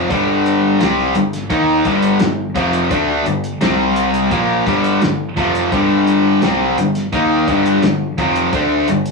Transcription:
0.09 G1 G2 D3 G3, kick, closed hi-hat
0.46 closed hi-hat
0.80 C2 C3 G3 C4, snare, closed hi-hat
1.15 G1 G2 D3, closed hi-hat
1.33 snare, closed hi-hat
1.50 D#2 D#3 A#3 D#4, kick, closed hi-hat
1.85 G1 G2 D3 G3, kick, closed hi-hat
2.02 closed hi-hat
2.19 G1 G2 D3, snare, closed hi-hat
2.55 F1 F2 C3 F3, kick, closed hi-hat
2.73 closed hi-hat
2.90 D2 D3 A3 D4, kick, closed hi-hat
3.26 G1 G2 D3, closed hi-hat
3.44 closed hi-hat
3.61 C2 C3 G3 C4, snare, closed hi-hat
3.96 closed hi-hat
4.14 closed hi-hat
4.31 A#1 A#2 F3 A#3, kick, closed hi-hat
4.66 G1 G2 D3 G3, kick, closed hi-hat
4.84 closed hi-hat
5.01 G1 G2 D3, snare, closed hi-hat
5.37 F1 F2 C3 F3, kick, closed hi-hat
5.55 closed hi-hat
5.72 G1 G2 D3 G3, kick, closed hi-hat
6.07 closed hi-hat
6.42 C2 C3 G3 C4, snare, closed hi-hat
6.77 G1 G2 D3, closed hi-hat
6.95 snare, closed hi-hat
7.13 D#2 D#3 A#3 D#4, kick, closed hi-hat
7.48 G1 G2 D3 G3, kick, closed hi-hat
7.66 closed hi-hat
7.83 G1 G2 D3, snare, closed hi-hat
8.18 F1 F2 C3 F3, kick, closed hi-hat
8.36 closed hi-hat
8.53 D2 D3 A3 D4, kick, closed hi-hat
8.88 G1 G2 D3, closed hi-hat
9.06 closed hi-hat

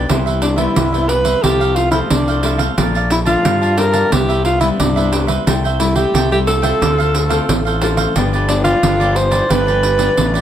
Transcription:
0.08 C2 C3 G3 B3 E4 G4 B4 C5 E5, pandeiro
0.26 B4 C5 E5, pandeiro
0.41 D4, muted cavaquinho stroke, pandeiro
0.56 G3 B3 E4 B4 C5 E5, pandeiro
0.75 C2 G2 G4 B4 C5 E5, pandeiro
0.93 G3 B3 E4 B4 C5 E5, pandeiro
1.08 B4, muted cavaquinho stroke, pandeiro
1.24 B4 C5 E5, pandeiro
1.43 C2 C3 F3 A3 E4 G4 A4 C5 F5, pandeiro
1.60 A4 C5 F5, pandeiro
1.75 F4, pandeiro
1.91 F3 A3 E4 A4 C5 F5, pandeiro
2.10 C2 C3 D4, pandeiro
2.27 A4 C5 F5, pandeiro
2.42 F3 A3 E4 A4 C5 F5, pandeiro
2.58 A4 C5 F5, pandeiro
2.77 A#1 A#2 F3 A3 D4 A#4 D5 F5 A5, pandeiro
2.95 D5 F5 A5, pandeiro
3.10 E4, muted cavaquinho stroke, pandeiro
3.25 F3 A3 D4 F4 D5 F5 A5, pandeiro
3.44 F2 G2 A#4 D5 F5 A5, pandeiro
3.62 D5 F5 A5, pandeiro
3.77 F3 A3 D4 A#4, muted cavaquinho stroke, pandeiro
3.93 D5 F5 A5, pandeiro
4.11 C2 C3 G3 B3 E4 G4 B4 C5 E5, pandeiro
4.29 B4 C5 E5, pandeiro
4.45 F4, pandeiro
4.60 G3 B3 E4 B4 C5 E5, pandeiro
4.79 C2 G2 D4, pandeiro
4.96 G3 B3 E4 B4 C5 E5, pandeiro
5.12 G4 B4 C5 E5, pandeiro
5.27 B4 C5 E5, pandeiro
5.46 C2 C3 G3 A3 E4 A4 C5 E5 G5, pandeiro
5.64 C5 E5 G5, pandeiro
5.79 G3 A3 E4, muted cavaquinho stroke, pandeiro
5.95 G4 C5 E5 G5, pandeiro
6.14 C2 C3 A4 C5 E5 G5, pandeiro
6.31 G3 A3 E4 G4 C5 E5 G5, pandeiro
6.46 A4, muted cavaquinho stroke, pandeiro
6.62 C4 F4 A4 C5 E5 G5, pandeiro
6.80 D2 D3 D4 A4 C5 F5, pandeiro
6.98 A4 C5 F5, pandeiro
7.14 pandeiro
7.29 C4 F4 A4 C5 F5, pandeiro
7.48 A1 A2, pandeiro
7.65 A4 C5 F5, pandeiro
7.81 C4 D4 F4 A4 C5 F5, pandeiro
7.97 A4 C5 F5, pandeiro
8.15 G1 G2 F3 B3 D4 F4 G4 B4 D5, pandeiro
8.33 G4 B4 D5, pandeiro
8.48 F3 B3 D4, muted cavaquinho stroke, pandeiro
8.64 F4 G4 B4 D5, pandeiro
8.83 G1 D3 F3 B3 D4 F4 G4 B4 D5, pandeiro
9.00 F3 B3 D4 G4 B4 D5, pandeiro
9.15 C5, muted cavaquinho stroke, pandeiro
9.31 G4 B4 D5, pandeiro
9.49 G1 G2 F3 B3 D4 F4 G4 B4 D5, pandeiro
9.67 G4 B4 D5, pandeiro
9.83 pandeiro
9.98 F3 B3 D4 G4 B4 D5, pandeiro
10.17 A1 D3 F3 B3 D4, pandeiro
10.34 G4 B4 D5, pandeiro

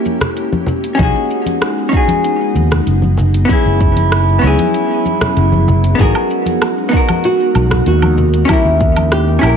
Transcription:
Already playing: A#3 C#4 E4 G4 A#4
0.05 high conga, shaker
0.21 cross-stick, closed hi-hat, low conga, shaker
0.37 closed hi-hat, shaker
0.52 high conga, shaker
0.66 G#3 B3 D#4, low conga, shaker
0.84 closed hi-hat, shaker
0.95 C#4 D#4
0.99 B1 G#4, kick, closed hi-hat, high conga, shaker
1.15 shaker
1.31 shaker
1.46 closed hi-hat, high conga, shaker
1.62 cross-stick, closed hi-hat, shaker
1.78 shaker
1.89 C#4 D#4, kick
1.93 F#4 G#4, shaker
2.08 closed hi-hat, high conga, shaker
2.24 closed hi-hat, shaker
2.41 shaker
2.55 D#2, high conga, shaker
2.71 cross-stick, closed hi-hat, low conga, shaker
2.87 F#1, closed hi-hat, shaker
3.02 high conga, shaker
3.17 low conga, shaker
3.34 closed hi-hat, shaker
3.45 B3 C#4
3.49 F#3 B3 C#4 E4 G#4, kick, closed hi-hat, high conga, shaker
3.65 F#1, shaker
3.81 kick, shaker
3.96 closed hi-hat, high conga, shaker
4.12 cross-stick, closed hi-hat, shaker
4.28 shaker
4.39 C#2 B3 C#4
4.43 E4 G#4, shaker
4.59 closed hi-hat, high conga, shaker
4.74 closed hi-hat, shaker
4.90 shaker
5.05 high conga, shaker
5.21 cross-stick, closed hi-hat, low conga, shaker
5.37 F#1, closed hi-hat, shaker
5.52 high conga, shaker
5.68 low conga, shaker
5.84 closed hi-hat, shaker
5.95 B3 D#4, high conga
5.99 G#1 G#3 D#4 F#4 G#4 A#4, kick, closed hi-hat, shaker
6.15 low woodblock, shaker
6.31 shaker
6.46 closed hi-hat, high conga, shaker
6.62 cross-stick, closed hi-hat, low woodblock, shaker
6.78 shaker
6.89 B3 D#4, shaker
6.93 F#4 A#4, kick
7.09 closed hi-hat, high conga, low woodblock, shaker
7.24 F#4, closed hi-hat, shaker
7.40 shaker
7.55 B1, high conga, low woodblock, shaker
7.71 cross-stick, closed hi-hat, low conga, shaker
7.86 D#2 F#4, closed hi-hat, shaker
8.02 high conga, low woodblock, shaker
8.18 low conga, shaker
8.34 closed hi-hat, shaker
8.45 A#3 C#4 E4, closed hi-hat, high conga, low woodblock, shaker
8.49 C#4 E4 G4 A#4 G5, kick
8.65 D#2, shaker
8.81 kick, shaker
8.96 closed hi-hat, high conga, low woodblock, shaker
9.12 G4, cross-stick, closed hi-hat, shaker
9.28 shaker
9.39 A#1 C#4 E4
9.43 G4 A#4, low woodblock, shaker

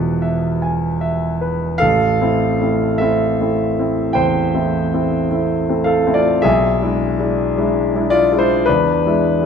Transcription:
Already playing: E2 B2 E3 B4 E5 G#5
0.22 E5
0.62 G#5
1.01 E5
1.41 B4
1.78 A1 A4 F5
2.21 A3 C4 E4
2.60 A3 C4 E4
2.98 A3 C4 E4 A4 E5
3.41 A3 C4 E4
3.79 A3 C4 E4
4.13 E2 C5 G5
4.54 A3 C4 E4
4.94 A3 C4 E4
5.31 A3 C4 E4
5.69 A3 C4 E4
5.84 A4 F5
6.07 A3 C4 E4
6.14 F4 D5
6.42 B1 G#4 E5
6.82 G#3 D4 E4
7.19 G#3 D4 E4
7.58 G#3 D4 E4
7.95 G#3 D4 E4
8.10 F4 D5
8.32 G#3 D4 E4
8.39 E4 C5
8.66 E2 D4 B4
9.06 G#3 D4 E4
9.42 G#3

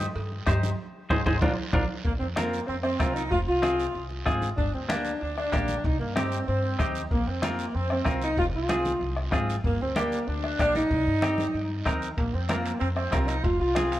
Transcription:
0.00 high conga, short guiro
0.15 G2, cowbell, long guiro
0.32 high conga
0.46 G2 D#4 G4 C5, bombo low, bombo rim, cowbell, high conga, low timbale, short guiro
0.63 high conga, short guiro
1.10 G#1 D#4 G#4 C5, bombo low, high conga, high timbale, long guiro
1.26 G#1 D#4 G#4 C5, bombo low, high conga, high timbale, long guiro
1.42 A#1 D4 F4 A#4, bombo low, high conga, high timbale, long guiro
1.73 A#1 D4 F4 A#4, bombo low, high conga, high timbale, long guiro
2.05 A#1 A#3, bombo low, long guiro
2.20 F2 C4, high conga
2.36 A#3 C4 F4 A#4, bombo rim, high conga, short guiro
2.53 short guiro
2.67 F2 C4, long guiro
2.83 C4, bombo rim, high conga
3.00 C2 C4 F4 A#4, bombo low, bombo rim, high conga, short guiro
3.15 D#4, short guiro
3.31 F1 F4, bombo low, long guiro
3.47 C2 F4, high conga
3.62 C4 F4 G#4, bombo rim, high conga, short guiro
3.80 short guiro
3.95 C2, long guiro
4.10 high conga
4.26 G#1 C4 F4 G#4, bombo low, bombo rim, high conga, short guiro
4.42 high conga, short guiro
4.57 G1 D4, bombo low, long guiro
4.74 D2 C4, high conga
4.89 A#3 D4 G4, bombo rim, high conga, short guiro
5.05 short guiro
5.21 D2 D4, long guiro
5.37 D4, bombo rim, high conga
5.53 A#1 A#3 D4 G4, bombo low, bombo rim, high conga, short guiro
5.68 high conga, short guiro
5.84 C2 D#4, bombo low, long guiro
6.00 G2 A#3, high conga
6.16 C4 D#4 G4, bombo rim, high conga, short guiro
6.32 short guiro
6.48 G2 C4, long guiro
6.64 high conga
6.79 D#2 C4 D#4 G4, bombo low, bombo rim, high conga, short guiro
6.95 short guiro
7.11 A#1 A#3, bombo low, long guiro
7.27 F2 C4, high conga
7.42 A#3 C4 F4 A#4, bombo rim, high conga, short guiro
7.59 short guiro
7.75 F2 C4, long guiro
7.90 C4, bombo rim, high conga
8.05 C2 C4 F4 A#4, bombo low, bombo rim, high conga, short guiro
8.22 D#4, short guiro
8.37 F1 F4, bombo low, long guiro
8.54 C2 F4, high conga
8.69 C4 F4 G#4, bombo rim, high conga, short guiro
8.85 high conga, short guiro
9.01 C2, long guiro
9.16 bombo rim, high conga
9.32 G#1 C4 F4 G#4, bombo low, bombo rim, high conga, short guiro
9.49 short guiro
9.64 G1 A#3, bombo low, long guiro
9.80 D2 C4, high conga
9.96 A#3 D4 G4, bombo rim, high conga, short guiro
10.12 short guiro
10.28 D2 D4, long guiro
10.44 bombo rim, high conga
10.59 A#1 A#3 D4 G4, bombo low, bombo rim, high conga, short guiro
10.75 D#4, high conga, short guiro
10.91 C2, bombo low, long guiro
11.07 G2, high conga
11.22 C4 D#4 G4, bombo rim, high conga, short guiro
11.38 high conga, short guiro
11.54 G2, long guiro
11.70 high conga
11.86 D#2 C4 D#4 A#4, bombo low, bombo rim, high conga, short guiro
12.02 short guiro
12.18 A#1 A#3, bombo low, high timbale, long guiro
12.34 F2 C4, high conga
12.49 A#3 C4 F4 A#4, bombo rim, high conga, high timbale, short guiro
12.65 high timbale, short guiro
12.80 F2 C4, high timbale, long guiro
12.96 C4, bombo rim, high conga
13.12 C2 C4 F4 A#4, bombo low, bombo rim, high conga, high timbale, low timbale, short guiro
13.27 D#4, high timbale, short guiro
13.44 F1 F4, bombo low, high timbale, long guiro
13.60 C2 F4, high conga
13.75 C4 F4 G#4, bombo rim, high conga, high timbale, short guiro
13.92 high timbale, short guiro

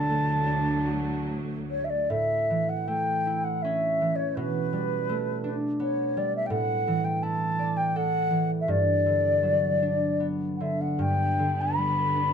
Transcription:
Already playing: D2 A2 D3 F#3 D4 A5
0.09 A3
0.47 D4
0.87 F#4
1.69 C#5
1.84 E5
1.89 D5
2.09 A2 E5
2.50 E3
2.69 F#5
2.87 A3 G5
3.27 E4
3.44 F#5
3.62 C#4 E5
4.01 E3
4.15 C#5
4.35 B2 B4
4.73 G3
5.09 A3
5.44 D4
5.80 B3 C#5
6.17 G3 D5
6.36 E5
6.46 G5
6.50 A2 F#5
6.88 E3
7.04 G5
7.22 E4 A5
7.59 D5
7.76 G5
7.96 A4 F#5
8.31 E3
8.61 E5
8.68 G2 D5
9.06 D3
9.43 F#3
9.82 D4
10.20 B3
10.56 F#5
10.60 D3 E5
10.81 F#5
10.99 G2 D3 B3 G5
11.39 D3
11.61 B5
11.78 G3
12.16 D4

